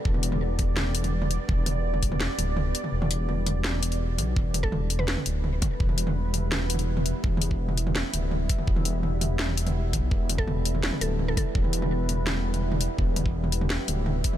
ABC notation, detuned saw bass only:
X:1
M:4/4
L:1/16
Q:1/4=167
K:Em
V:1 name="Detuned saw bass" clef=bass
E,,,3 E,,,12 z | E,,,8- E,,, z D,,,4 z2 | E,,,3 E,,,8- E,,,3 B,,,2 | E,,,8- E,,, z D,,,4 z2 |
E,,,3 E,,,12 z | E,,,8- E,,, z D,,,4 z2 | E,,,3 E,,,8- E,,,3 B,,,2 | E,,,8- E,,, z D,,,4 z2 |
E,,,3 E,,,12 z | E,,,8- E,,, z D,,,4 z2 |]